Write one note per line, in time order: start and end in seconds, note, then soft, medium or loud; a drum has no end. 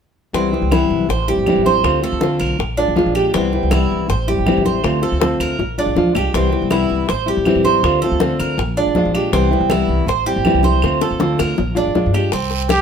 0.33 0.61 C2 medium
0.33 0.52 C3 medium
0.33 0.52 E3 medium
0.33 0.52 G3 medium
0.33 0.52 B3 medium
0.33 0.71 C4 medium
0.33 0.51 E4 medium
0.33 high bongo medium
0.33 high conga soft
0.53 0.72 G3 soft
0.53 0.71 B3 soft
0.53 0.71 E4 soft
0.53 high bongo soft
0.53 high conga soft
0.62 0.89 C2 medium
0.71 1.09 C3 medium
0.71 1.08 E3 medium
0.71 1.09 G3 medium
0.71 1.09 B3 medium
0.71 1.08 E4 medium
0.71 1.09 E4 medium
0.71 high bongo soft
0.71 high conga medium
0.71 claves medium
0.90 1.08 B1 medium
0.90 high conga soft
1.09 1.36 A1 medium
1.09 1.28 C5 medium
1.09 muted nylon-string guitar stroke medium
1.09 high bongo medium
1.09 high conga soft
1.28 1.47 G3 soft
1.28 1.47 C4 soft
1.28 1.46 E4 soft
1.28 1.64 G4 medium
1.28 high bongo soft
1.28 high conga soft
1.37 1.55 A1 medium
1.46 1.65 E3 medium
1.46 1.66 G3 medium
1.46 1.65 C4 medium
1.46 1.63 E4 medium
1.46 high bongo soft
1.46 low bongo medium
1.46 high conga medium
1.46 claves medium
1.56 1.83 A1 medium
1.65 1.84 G3 soft
1.65 1.84 C4 soft
1.65 1.83 E4 soft
1.65 2.02 C5 medium
1.65 high bongo soft
1.65 high conga medium
1.84 2.11 D2 medium
1.84 2.02 D3 medium
1.84 2.02 A3 medium
1.84 2.02 C4 medium
1.84 2.01 F4 medium
1.84 high bongo medium
1.84 high conga soft
1.84 claves medium
2.02 2.20 A3 soft
2.02 2.21 C4 soft
2.02 2.21 F4 soft
2.02 2.39 A4 medium
2.02 high bongo soft
2.02 high conga soft
2.12 2.39 D2 medium
2.21 2.58 D3 medium
2.21 2.58 A3 medium
2.21 2.59 C4 medium
2.21 2.59 F4 medium
2.21 high bongo soft
2.21 high conga medium
2.40 2.58 B1 medium
2.40 2.76 A#4 medium
2.40 high conga soft
2.40 claves medium
2.59 2.86 A#1 medium
2.59 muted nylon-string guitar stroke soft
2.59 high bongo medium
2.59 high conga soft
2.77 2.95 G#3 soft
2.77 3.14 D4 medium
2.77 2.95 D4 soft
2.77 2.96 F4 soft
2.77 high bongo soft
2.77 high conga soft
2.88 3.06 A#1 medium
2.95 3.14 F3 medium
2.95 3.14 G#3 medium
2.95 3.15 D4 medium
2.95 3.15 F4 medium
2.95 high bongo soft
2.95 low bongo medium
2.95 high conga medium
3.06 3.33 A#1 medium
3.15 3.34 G#3 soft
3.15 3.34 D4 soft
3.15 3.34 F4 soft
3.15 3.33 G4 medium
3.15 high bongo soft
3.15 high conga soft
3.15 claves medium
3.34 3.61 C2 medium
3.34 3.52 C3 medium
3.34 3.53 E3 medium
3.34 3.53 G3 medium
3.34 3.53 B3 medium
3.34 3.70 C4 medium
3.34 3.52 E4 medium
3.34 high bongo medium
3.34 high conga soft
3.52 3.72 G3 soft
3.52 3.72 B3 soft
3.52 3.71 E4 soft
3.52 high bongo soft
3.52 high conga soft
3.63 3.89 C2 medium
3.71 4.08 C3 medium
3.71 4.08 E3 medium
3.71 4.08 G3 medium
3.71 4.09 B3 medium
3.71 4.08 E4 medium
3.71 high bongo soft
3.71 high conga medium
3.71 claves medium
3.90 4.09 C2 medium
3.90 high conga soft
4.09 4.36 A1 medium
4.09 4.28 C5 medium
4.09 muted nylon-string guitar stroke medium
4.09 high bongo medium
4.09 high conga soft
4.28 4.45 G3 soft
4.28 4.46 C4 soft
4.28 4.46 E4 soft
4.28 4.64 G4 medium
4.28 high bongo soft
4.28 high conga soft
4.38 4.56 A1 medium
4.46 4.64 E3 medium
4.46 4.64 G3 medium
4.46 4.64 C4 medium
4.46 4.63 E4 medium
4.46 high bongo soft
4.46 low bongo medium
4.46 high conga medium
4.46 claves medium
4.57 4.83 A1 medium
4.64 4.83 G3 soft
4.64 4.83 C4 soft
4.64 4.83 E4 soft
4.64 5.02 C5 medium
4.64 high bongo soft
4.64 high conga medium
4.83 5.11 D2 medium
4.83 5.01 D3 medium
4.83 5.02 A3 medium
4.83 5.02 C4 medium
4.83 5.01 F4 medium
4.83 high bongo medium
4.83 high conga soft
4.83 claves medium
5.02 5.19 A3 soft
5.02 5.19 C4 soft
5.02 5.20 F4 soft
5.02 5.39 A4 medium
5.02 high bongo soft
5.02 high conga soft
5.12 5.39 D2 medium
5.19 5.57 D3 medium
5.19 5.57 A3 medium
5.19 5.58 C4 medium
5.19 5.58 F4 medium
5.19 high bongo medium
5.19 high conga medium
5.40 5.58 D2 medium
5.40 5.77 A#4 medium
5.40 high conga soft
5.40 claves medium
5.59 5.86 A#1 medium
5.59 muted nylon-string guitar stroke medium
5.59 low bongo medium
5.59 high conga soft
5.78 5.95 G#3 soft
5.78 6.14 D4 medium
5.78 5.96 D4 soft
5.78 5.96 F4 soft
5.78 high conga soft
5.86 5.95 A#1 medium
5.95 6.13 D2 medium
5.95 6.14 F3 medium
5.95 6.14 G#3 medium
5.95 6.15 D4 medium
5.95 6.14 F4 medium
5.95 low bongo medium
5.95 high conga medium
6.15 6.32 C2 medium
6.15 6.34 G#3 soft
6.15 6.33 D4 soft
6.15 6.33 F4 soft
6.15 6.34 G4 medium
6.15 low bongo medium
6.15 claves medium
6.33 6.61 C2 medium
6.33 6.52 C3 medium
6.33 6.52 E3 medium
6.33 6.52 G3 medium
6.33 6.51 B3 medium
6.33 6.71 C4 medium
6.33 6.51 E4 medium
6.33 high bongo medium
6.33 high conga soft
6.52 6.70 G3 soft
6.52 6.70 B3 soft
6.52 6.70 E4 soft
6.52 high bongo soft
6.52 high conga soft
6.62 6.89 C2 medium
6.71 7.08 C3 medium
6.71 7.08 E3 medium
6.71 7.08 G3 medium
6.71 7.08 B3 medium
6.71 7.08 E4 medium
6.71 high bongo soft
6.71 high conga medium
6.71 claves medium
6.90 7.08 C2 medium
6.90 high conga soft
7.09 7.36 A1 medium
7.09 7.27 C5 medium
7.09 muted nylon-string guitar stroke medium
7.09 high bongo medium
7.09 high conga soft
7.26 7.46 G3 soft
7.26 7.45 C4 soft
7.26 7.45 E4 soft
7.26 7.64 G4 medium
7.26 high bongo soft
7.26 high conga soft
7.37 7.55 A1 medium
7.45 7.64 E3 medium
7.45 7.64 G3 medium
7.45 7.65 C4 medium
7.45 7.64 E4 medium
7.45 high bongo soft
7.45 low bongo medium
7.45 high conga medium
7.45 claves medium
7.55 7.82 A1 medium
7.64 7.84 G3 soft
7.64 7.83 C4 soft
7.64 7.83 E4 soft
7.64 8.01 C5 medium
7.64 high bongo soft
7.64 high conga medium
7.83 8.10 D2 medium
7.83 8.01 D3 medium
7.83 8.02 A3 medium
7.83 8.02 C4 medium
7.83 8.02 F4 medium
7.83 high bongo medium
7.83 high conga soft
7.83 claves medium
8.02 8.21 A3 soft
8.02 8.21 C4 soft
8.02 8.21 F4 soft
8.02 8.38 A4 medium
8.02 high bongo soft
8.02 high conga soft
8.11 8.38 D2 medium
8.20 8.58 D3 medium
8.20 8.58 A3 medium
8.20 8.58 C4 medium
8.20 8.58 F4 medium
8.20 high bongo medium
8.20 high conga medium
8.39 8.57 D2 medium
8.39 8.76 A#4 medium
8.39 high conga soft
8.39 claves medium
8.58 8.85 A#1 medium
8.58 muted nylon-string guitar stroke medium
8.58 high bongo medium
8.58 high conga soft
8.77 8.95 G#3 soft
8.77 9.13 D4 medium
8.77 8.96 D4 soft
8.77 8.95 F4 soft
8.77 high bongo soft
8.77 high conga soft
8.87 9.04 A#1 medium
8.95 9.14 F3 medium
8.95 9.14 G#3 medium
8.95 9.14 D4 medium
8.95 9.13 F4 medium
8.95 high bongo soft
8.95 low bongo medium
8.95 high conga medium
9.05 9.32 A#1 medium
9.14 9.33 G#3 soft
9.14 9.33 D4 soft
9.14 9.32 F4 soft
9.14 9.33 G4 medium
9.14 high bongo soft
9.14 high conga soft
9.14 claves medium
9.32 9.60 C2 medium
9.32 9.51 C3 medium
9.32 9.51 E3 medium
9.32 9.51 G3 medium
9.32 9.51 B3 medium
9.32 9.70 C4 medium
9.32 9.50 E4 medium
9.32 high bongo medium
9.32 high conga soft
9.51 9.70 G3 soft
9.51 9.70 B3 soft
9.51 9.69 E4 soft
9.51 high bongo soft
9.51 high conga soft
9.60 9.87 C2 medium
9.70 10.07 C3 medium
9.70 10.07 E3 medium
9.70 10.07 G3 medium
9.70 10.07 B3 medium
9.70 10.07 E4 medium
9.70 high bongo soft
9.70 high conga medium
9.70 claves medium
9.88 10.06 C2 medium
9.88 high conga soft
10.07 10.34 A1 medium
10.07 10.26 C5 medium
10.07 muted nylon-string guitar stroke medium
10.07 high bongo medium
10.07 high conga soft
10.26 10.44 G3 soft
10.26 10.45 C4 soft
10.26 10.45 E4 soft
10.26 10.63 G4 medium
10.26 high bongo soft
10.26 high conga soft
10.36 10.54 A1 medium
10.45 10.63 E3 medium
10.45 10.63 G3 medium
10.45 10.64 C4 medium
10.45 10.63 E4 medium
10.45 high bongo soft
10.45 low bongo medium
10.45 high conga medium
10.45 claves medium
10.55 10.81 C2 medium
10.63 10.83 G3 soft
10.63 10.83 C4 soft
10.63 10.82 E4 soft
10.63 11.00 C5 medium
10.63 high bongo soft
10.63 high conga medium
10.82 11.09 D2 medium
10.82 11.01 D3 medium
10.82 11.01 A3 medium
10.82 11.02 C4 medium
10.82 11.02 F4 medium
10.82 high bongo medium
10.82 high conga soft
10.82 claves medium
11.01 11.20 C4 soft
11.01 11.20 F4 soft
11.01 11.38 A4 medium
11.01 high bongo medium
11.01 high conga soft
11.05 11.20 A3 soft
11.11 11.37 D2 medium
11.20 11.57 D3 medium
11.20 11.57 A3 medium
11.20 11.58 C4 medium
11.20 11.57 F4 medium
11.20 high bongo medium
11.20 high conga medium
11.38 11.57 D2 medium
11.38 11.76 A#4 medium
11.38 high bongo medium
11.38 high conga soft
11.38 claves medium
11.56 11.85 A#1 medium
11.56 muted nylon-string guitar stroke medium
11.56 low bongo medium
11.56 high conga soft
11.75 11.94 G#3 soft
11.75 11.94 D4 soft
11.75 12.13 D4 medium
11.75 11.94 F4 soft
11.75 low bongo medium
11.75 high conga soft
11.86 12.04 A#1 medium
11.94 12.13 F3 medium
11.94 12.13 G#3 medium
11.94 12.13 D4 medium
11.94 12.13 F4 medium
11.94 low bongo medium
11.94 high conga medium
12.06 12.32 G2 medium
12.14 12.33 G#3 soft
12.14 12.32 D4 soft
12.14 12.32 F4 soft
12.14 12.32 G4 medium
12.14 low bongo medium
12.14 high conga soft
12.14 claves medium
12.32 12.81 C2 medium
12.32 12.69 C4 medium
12.32 high bongo medium
12.32 high conga soft
12.32 long guiro medium
12.51 high bongo soft
12.51 high conga soft
12.69 12.81 G4 medium
12.69 high bongo medium
12.69 high conga medium
12.69 short guiro medium
12.69 claves medium